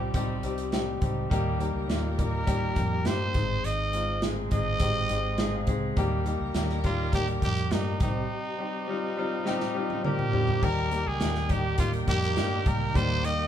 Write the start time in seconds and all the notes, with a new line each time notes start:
Already playing: C2 C3 G3 C4 D#4 F4 G4
0.14 G3 C4 D#4 G4, kick, closed hi-hat
0.43 C2 G3 C4 D#4 G4, closed hi-hat
0.58 closed hi-hat
0.72 G3 C4 D#4 G4, snare, closed hi-hat
1.01 C#2 G3 C4 D#4 G4, kick, closed hi-hat
1.30 D#2 D#3 G3 A#3 D#4 G4 A#4, kick, closed hi-hat
1.59 G3 A#3 D#4 G4, closed hi-hat
1.75 C#2
1.88 D#2 G3 A#3 D#4 F4, snare, closed hi-hat
2.17 G3 A#3 D#4 G4 A#4, kick, closed hi-hat
2.46 G3 A#3 D#4 G4, kick, closed hi-hat
2.76 F2 G3 A#3 D#4 G4, kick, closed hi-hat
3.05 G2 G3 A#3 D#4 G4 C5, snare, closed hi-hat
3.33 G#1 G#2 G#3 C4 D#4 G#4, kick, closed hi-hat
3.64 G#1 D#5, closed hi-hat
3.93 G#3 C4 D#4 F4, closed hi-hat
4.22 G#3 C4 D#4 G#4, snare, closed hi-hat
4.51 G#1 G#3 C4 D#4 G#4 D#5, kick, closed hi-hat
4.79 G#3 C4 D#4 G4, kick, closed hi-hat
5.09 G#1 G#3 C4 D#4 G#4, closed hi-hat
5.38 G#3 C4 D#4 G#4 G#5, snare, closed hi-hat
5.54 F5
5.67 C#2 G#3 C4 D#4 G#4, kick, closed hi-hat
5.96 D#2 D#3 G3 A#3 D#4 G4 A#4, kick, closed hi-hat
6.25 G3 A#3 D#4 G4, closed hi-hat
6.40 C#2
6.54 D#2 G3 A#3 D#4 G4, snare, closed hi-hat
6.70 snare
6.84 G3 A#3 D#4 F4 A#4, kick, closed hi-hat
7.13 G3 A#3 D#4 G4, kick, closed hi-hat
7.28 closed hi-hat
7.42 F2 G3 A#3 D#4 G4, kick, closed hi-hat
7.57 closed hi-hat
7.71 G2 G3 A#3 D#4 G4, snare, closed hi-hat
8.00 C2 C3 G3 C4 D#4 G4, kick, closed hi-hat
8.58 G3 C4 D#4 G4
8.87 G3 C4 D#4 F4
9.17 G3 C4 D#4 F4
9.45 G3 C4 D#4 G4, snare
9.60 snare
9.74 G3 C4 D#4 F4
9.90 high tom
10.03 G3 C4 D#4 G4 A#4, mid tom
10.19 mid tom
10.32 G3 C4 D#4 G4, floor tom
10.48 floor tom
10.61 D#2 D#3 G3 A#3 D#4 G4 A#4 G5, kick, crash
10.91 G3 A#3 D#4 G4, closed hi-hat
11.06 C#2 G#4
11.20 D#2 G3 A#3 D#4 G4, snare, closed hi-hat
11.35 snare
11.49 G3 A#3 D#4 G4, kick, closed hi-hat
11.78 G3 A#3 D#4 F4 G4, kick, closed hi-hat
11.93 closed hi-hat
12.07 F2 G3 A#3 D#4 G4, kick, closed hi-hat
12.22 closed hi-hat
12.36 G2 G3 A#3 D#4 G4, snare, closed hi-hat
12.66 C#2 G3 A#3 D#4 G4 A#4, kick, closed hi-hat
12.94 D#2 D#3 G3 A#3 D#4 G4 C5, kick, closed hi-hat
13.23 G3 A#3 D#4 G4 D#5, closed hi-hat